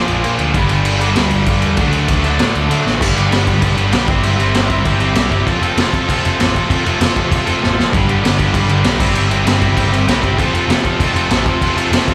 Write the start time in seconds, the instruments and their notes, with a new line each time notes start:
Already playing: overdriven electric guitar A#2 F3 A#3 D4, distorted electric guitar A#2 F3 A#3
0.08 picked electric bass A#1, crash
0.22 overdriven electric guitar A#2 F3 A#3, picked electric bass A#2, crash
0.38 picked electric bass D2, crash
0.53 picked electric bass G1, overdriven electric guitar G2 D3 G3 B3 D4, kick, crash
0.69 crash
0.85 picked electric bass G1, crash
0.99 overdriven electric guitar G2 D3 G3 B3 D4, crash
1.15 picked electric bass D2, distorted electric guitar G2 D3 G3, snare, crash
1.31 picked electric bass G1, crash
1.46 picked electric bass G2, overdriven electric guitar G2 D3 G3, kick, crash
1.62 picked electric bass E2, crash
1.77 picked electric bass D2, overdriven electric guitar D3 F#3 A3 D4, kick, crash
1.92 crash
2.08 picked electric bass D2, kick, crash
2.23 overdriven electric guitar D3 F#3 A3 D4, crash
2.38 picked electric bass A2, distorted electric guitar D3 A3 D4, snare, crash
2.55 picked electric bass D2, crash
2.69 overdriven electric guitar D3 A3 D4, picked electric bass D3, crash
2.85 picked electric bass A1, snare
3.00 picked electric bass G1, overdriven electric guitar G2 D3 G3 B3 D4 G4, kick, crash
3.15 picked electric bass G1, overdriven electric guitar G2 D3 G3 B3 D4 G4, crash
3.31 picked electric bass G1, overdriven electric guitar G2 D3 G3 B3 D4 G4, snare, crash
3.46 overdriven electric guitar G2 D3 G3 B3 D4 G4, kick, crash
3.61 picked electric bass G1, overdriven electric guitar G2 D3 G3 B3 D4 G4, kick, crash
3.77 picked electric bass G1, overdriven electric guitar G2 D3 G3 B3 D4 G4, crash
3.92 picked electric bass B1, overdriven electric guitar G2 D3 G3 B3 D4 G4, snare, crash
4.08 picked electric bass G1, overdriven electric guitar C3 G3 C4 E4 G4, kick, crash
4.23 picked electric bass G1, overdriven electric guitar C3 G3 C4 E4 G4, crash
4.38 picked electric bass G1, overdriven electric guitar C3 G3 C4 E4 G4, crash
4.54 picked electric bass G1, overdriven electric guitar C3 G3 C4 E4 G4, snare, crash
4.69 overdriven electric guitar C3 G3 C4 E4 G4, kick, crash
4.84 picked electric bass G1, overdriven electric guitar C3 G3 C4 E4 G4, kick, crash
4.99 picked electric bass G1, overdriven electric guitar C3 G3 C4 E4 G4, crash
5.14 picked electric bass B1, overdriven electric guitar C3 G3 C4 E4 G4, snare, crash
5.30 picked electric bass G1, overdriven electric guitar C3 G3 C4 E4 G4, kick, crash
5.46 picked electric bass F1, overdriven electric guitar F2 C3 F3 C4 F4 A4, kick, crash
5.61 picked electric bass F1, overdriven electric guitar F2 C3 F3 C4 F4 A4, crash
5.76 picked electric bass F1, overdriven electric guitar F2 C3 F3 C4 F4 A4, snare, crash
5.92 overdriven electric guitar F2 C3 F3 C4 F4 A4, kick, crash
6.07 picked electric bass F1, overdriven electric guitar F2 C3 F3 C4 F4 A4, kick, crash
6.24 picked electric bass F1, overdriven electric guitar F2 C3 F3 C4 F4 A4, crash
6.38 picked electric bass A1, overdriven electric guitar F2 C3 F3 C4 F4 A4, snare, crash
6.54 picked electric bass F1, overdriven electric guitar F2 C3 F3 C4 F4 A4, kick, crash
6.69 picked electric bass F1, overdriven electric guitar F2 C3 F3 C4 F4 A4, kick, crash
6.84 picked electric bass F1, overdriven electric guitar F2 C3 F3 C4 F4 A4, crash
7.00 picked electric bass F1, overdriven electric guitar F2 C3 F3 C4 F4 A4, snare, crash
7.15 overdriven electric guitar F2 C3 F3 C4 F4 A4, kick, crash
7.31 picked electric bass F1, overdriven electric guitar F2 C3 F3 C4 F4 A4, kick, crash
7.45 picked electric bass F1, overdriven electric guitar F2 C3 F3 C4 F4 A4, crash
7.61 picked electric bass A1, overdriven electric guitar F2 C3 F3 C4 F4 A4, snare
7.77 picked electric bass F1, overdriven electric guitar F2 C3 F3 C4 F4 A4, snare
7.92 picked electric bass G1, overdriven electric guitar G2 D3 G3 B3 D4 G4, kick, crash
8.08 picked electric bass G1, overdriven electric guitar G2 D3 G3 B3 D4 G4, crash
8.22 picked electric bass G1, overdriven electric guitar G2 D3 G3 B3 D4 G4, snare, crash
8.39 overdriven electric guitar G2 D3 G3 B3 D4 G4, kick, crash
8.54 picked electric bass G1, overdriven electric guitar G2 D3 G3 B3 D4 G4, kick, crash
8.69 picked electric bass G1, overdriven electric guitar G2 D3 G3 B3 D4 G4, crash
8.84 picked electric bass B1, overdriven electric guitar G2 D3 G3 B3 D4 G4, snare, crash
8.99 picked electric bass G1, overdriven electric guitar C3 G3 C4 E4 G4, kick, crash
9.15 picked electric bass G1, overdriven electric guitar C3 G3 C4 E4 G4, crash
9.29 picked electric bass G1, overdriven electric guitar C3 G3 C4 E4 G4, crash
9.46 picked electric bass G1, overdriven electric guitar C3 G3 C4 E4 G4, snare, crash
9.60 overdriven electric guitar C3 G3 C4 E4 G4, kick, crash
9.65 distorted electric guitar C3
9.76 picked electric bass G1, overdriven electric guitar C3 G3 C4 E4 G4, kick, crash
9.91 picked electric bass G1, overdriven electric guitar C3 G3 C4 E4 G4, crash
10.07 picked electric bass B1, overdriven electric guitar C3 G3 C4 E4 G4, snare, crash
10.23 picked electric bass G1, overdriven electric guitar C3 G3 C4 E4 G4, kick, crash
10.37 picked electric bass F1, overdriven electric guitar F2 C3 F3 C4 F4 A4, kick, crash
10.53 picked electric bass F1, overdriven electric guitar F2 C3 F3 C4 F4 A4, crash
10.68 picked electric bass F1, overdriven electric guitar F2 C3 F3 C4 F4 A4, snare, crash
10.84 overdriven electric guitar F2 C3 F3 C4 F4 A4, kick, crash
10.99 picked electric bass F1, overdriven electric guitar F2 C3 F3 C4 F4 A4, kick, crash
11.03 distorted electric guitar F3
11.14 picked electric bass F1, overdriven electric guitar F2 C3 F3 C4 F4 A4, crash
11.30 picked electric bass A1, overdriven electric guitar F2 C3 F3 C4 F4 A4, snare, crash
11.45 picked electric bass F1, overdriven electric guitar F2 C3 F3 C4 F4 A4, kick, crash
11.60 picked electric bass F1, overdriven electric guitar F2 C3 F3 C4 F4 A4, kick, crash
11.76 picked electric bass F1, overdriven electric guitar F2 C3 F3 C4 F4 A4, crash
11.92 picked electric bass F1, overdriven electric guitar F2 C3 F3 C4 F4 A4, snare, crash
12.07 overdriven electric guitar F2 C3 F3 C4 F4 A4, kick, crash